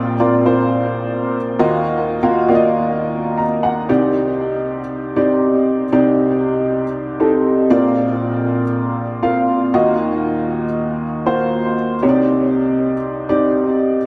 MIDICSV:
0, 0, Header, 1, 2, 480
1, 0, Start_track
1, 0, Tempo, 508475
1, 1750, Time_signature, 4, 2, 24, 8
1, 13273, End_track
2, 0, Start_track
2, 0, Title_t, "Upright piano"
2, 0, Program_c, 0, 0
2, 0, Control_c, 0, 64, 127
2, 0, Note_on_c, 0, 34, 72
2, 0, Note_on_c, 0, 46, 78
2, 0, Note_on_c, 0, 60, 83
2, 0, Note_on_c, 0, 65, 83
2, 0, Note_on_c, 0, 70, 86
2, 0, Note_on_c, 0, 74, 105
2, 0, Note_on_c, 0, 79, 63
2, 124, Note_off_c, 0, 60, 0
2, 124, Note_off_c, 0, 65, 0
2, 125, Note_off_c, 0, 70, 0
2, 126, Note_off_c, 0, 74, 0
2, 185, Note_on_c, 0, 60, 81
2, 186, Note_on_c, 0, 65, 76
2, 188, Note_on_c, 0, 70, 79
2, 188, Note_on_c, 0, 74, 93
2, 401, Note_off_c, 0, 60, 0
2, 402, Note_off_c, 0, 65, 0
2, 403, Note_off_c, 0, 70, 0
2, 403, Note_off_c, 0, 74, 0
2, 428, Note_on_c, 0, 60, 78
2, 429, Note_on_c, 0, 65, 76
2, 429, Note_on_c, 0, 70, 77
2, 434, Note_on_c, 0, 72, 85
2, 1289, Note_off_c, 0, 60, 0
2, 1290, Note_off_c, 0, 65, 0
2, 1290, Note_off_c, 0, 70, 0
2, 1292, Note_off_c, 0, 72, 0
2, 1473, Note_off_c, 0, 34, 0
2, 1474, Note_off_c, 0, 46, 0
2, 1504, Note_on_c, 0, 58, 96
2, 1504, Note_on_c, 0, 65, 86
2, 1505, Note_on_c, 0, 39, 74
2, 1505, Note_on_c, 0, 66, 86
2, 1506, Note_on_c, 0, 75, 101
2, 1507, Note_on_c, 0, 51, 69
2, 1523, Control_c, 0, 64, 0
2, 1532, Note_off_c, 0, 79, 0
2, 1707, Control_c, 0, 64, 127
2, 2045, Note_off_c, 0, 58, 0
2, 2045, Note_off_c, 0, 65, 0
2, 2045, Note_off_c, 0, 66, 0
2, 2046, Note_off_c, 0, 75, 0
2, 2102, Note_on_c, 0, 58, 85
2, 2104, Note_on_c, 0, 70, 98
2, 2105, Note_on_c, 0, 65, 84
2, 2105, Note_on_c, 0, 66, 85
2, 2321, Note_off_c, 0, 58, 0
2, 2322, Note_off_c, 0, 70, 0
2, 2323, Note_off_c, 0, 65, 0
2, 2323, Note_off_c, 0, 66, 0
2, 2345, Note_on_c, 0, 58, 84
2, 2345, Note_on_c, 0, 65, 78
2, 2347, Note_on_c, 0, 74, 67
2, 2348, Note_on_c, 0, 66, 71
2, 2406, Note_off_c, 0, 74, 0
2, 2407, Note_on_c, 0, 75, 94
2, 3186, Note_on_c, 0, 82, 62
2, 3209, Note_off_c, 0, 58, 0
2, 3209, Note_off_c, 0, 65, 0
2, 3210, Note_off_c, 0, 66, 0
2, 3240, Note_off_c, 0, 75, 0
2, 3392, Note_off_c, 0, 39, 0
2, 3393, Note_off_c, 0, 51, 0
2, 3412, Note_off_c, 0, 82, 0
2, 3428, Note_on_c, 0, 78, 76
2, 3653, Note_off_c, 0, 78, 0
2, 3671, Note_on_c, 0, 60, 80
2, 3673, Note_on_c, 0, 36, 63
2, 3673, Note_on_c, 0, 48, 68
2, 3673, Note_on_c, 0, 67, 80
2, 3674, Note_on_c, 0, 63, 72
2, 3678, Note_on_c, 0, 74, 85
2, 3685, Control_c, 0, 64, 0
2, 3866, Control_c, 0, 64, 127
2, 4532, Note_off_c, 0, 60, 0
2, 4533, Note_off_c, 0, 67, 0
2, 4534, Note_off_c, 0, 63, 0
2, 4535, Note_off_c, 0, 74, 0
2, 4873, Note_on_c, 0, 60, 74
2, 4874, Note_on_c, 0, 63, 68
2, 4875, Note_on_c, 0, 74, 83
2, 4876, Note_on_c, 0, 67, 66
2, 5518, Note_off_c, 0, 60, 0
2, 5519, Note_off_c, 0, 63, 0
2, 5519, Note_off_c, 0, 67, 0
2, 5519, Note_off_c, 0, 74, 0
2, 5556, Note_off_c, 0, 36, 0
2, 5556, Note_off_c, 0, 48, 0
2, 5591, Note_on_c, 0, 60, 80
2, 5592, Note_on_c, 0, 63, 79
2, 5593, Note_on_c, 0, 36, 67
2, 5593, Note_on_c, 0, 48, 78
2, 5593, Note_on_c, 0, 67, 79
2, 5594, Note_on_c, 0, 74, 88
2, 6452, Note_off_c, 0, 60, 0
2, 6453, Note_off_c, 0, 63, 0
2, 6453, Note_off_c, 0, 67, 0
2, 6453, Note_off_c, 0, 74, 0
2, 6794, Note_on_c, 0, 60, 74
2, 6796, Note_on_c, 0, 63, 69
2, 6798, Note_on_c, 0, 67, 65
2, 6799, Note_on_c, 0, 69, 76
2, 7235, Note_off_c, 0, 36, 0
2, 7235, Note_off_c, 0, 48, 0
2, 7257, Note_off_c, 0, 60, 0
2, 7272, Note_on_c, 0, 60, 96
2, 7273, Note_on_c, 0, 34, 69
2, 7273, Note_on_c, 0, 46, 68
2, 7273, Note_on_c, 0, 70, 84
2, 7274, Note_on_c, 0, 65, 86
2, 7275, Note_off_c, 0, 63, 0
2, 7275, Note_off_c, 0, 67, 0
2, 7276, Note_off_c, 0, 69, 0
2, 7276, Note_on_c, 0, 74, 100
2, 7285, Control_c, 0, 64, 0
2, 7469, Control_c, 0, 64, 127
2, 8132, Note_off_c, 0, 60, 0
2, 8132, Note_off_c, 0, 70, 0
2, 8133, Note_off_c, 0, 65, 0
2, 8134, Note_off_c, 0, 74, 0
2, 8708, Note_on_c, 0, 65, 70
2, 8709, Note_on_c, 0, 60, 70
2, 8709, Note_on_c, 0, 70, 65
2, 8711, Note_on_c, 0, 77, 81
2, 9154, Note_off_c, 0, 34, 0
2, 9154, Note_off_c, 0, 46, 0
2, 9179, Note_off_c, 0, 65, 0
2, 9190, Note_off_c, 0, 60, 0
2, 9190, Note_off_c, 0, 70, 0
2, 9191, Note_off_c, 0, 77, 0
2, 9193, Note_on_c, 0, 39, 74
2, 9194, Note_on_c, 0, 51, 71
2, 9194, Note_on_c, 0, 58, 82
2, 9194, Note_on_c, 0, 65, 81
2, 9195, Note_on_c, 0, 66, 79
2, 9195, Note_on_c, 0, 75, 93
2, 9202, Control_c, 0, 64, 0
2, 9357, Control_c, 0, 64, 127
2, 10052, Note_off_c, 0, 58, 0
2, 10052, Note_off_c, 0, 65, 0
2, 10052, Note_off_c, 0, 66, 0
2, 10052, Note_off_c, 0, 75, 0
2, 10629, Note_on_c, 0, 65, 68
2, 10631, Note_on_c, 0, 58, 71
2, 10633, Note_on_c, 0, 72, 83
2, 10635, Note_on_c, 0, 66, 71
2, 11073, Note_off_c, 0, 39, 0
2, 11073, Note_off_c, 0, 51, 0
2, 11274, Note_off_c, 0, 65, 0
2, 11275, Note_off_c, 0, 58, 0
2, 11276, Note_off_c, 0, 66, 0
2, 11276, Note_off_c, 0, 72, 0
2, 11351, Note_on_c, 0, 67, 73
2, 11353, Note_on_c, 0, 48, 71
2, 11353, Note_on_c, 0, 60, 81
2, 11354, Note_on_c, 0, 36, 72
2, 11354, Note_on_c, 0, 63, 71
2, 11355, Note_on_c, 0, 73, 69
2, 11361, Control_c, 0, 64, 0
2, 11410, Note_off_c, 0, 73, 0
2, 11412, Note_on_c, 0, 74, 90
2, 11508, Control_c, 0, 64, 127
2, 12209, Note_off_c, 0, 67, 0
2, 12210, Note_off_c, 0, 60, 0
2, 12210, Note_off_c, 0, 63, 0
2, 12239, Note_off_c, 0, 74, 0
2, 12547, Note_on_c, 0, 60, 66
2, 12547, Note_on_c, 0, 63, 66
2, 12547, Note_on_c, 0, 67, 65
2, 12549, Note_on_c, 0, 74, 88
2, 13191, Note_off_c, 0, 60, 0
2, 13191, Note_off_c, 0, 63, 0
2, 13191, Note_off_c, 0, 67, 0
2, 13192, Note_off_c, 0, 74, 0
2, 13231, Note_off_c, 0, 36, 0
2, 13231, Note_off_c, 0, 48, 0
2, 13273, End_track
0, 0, End_of_file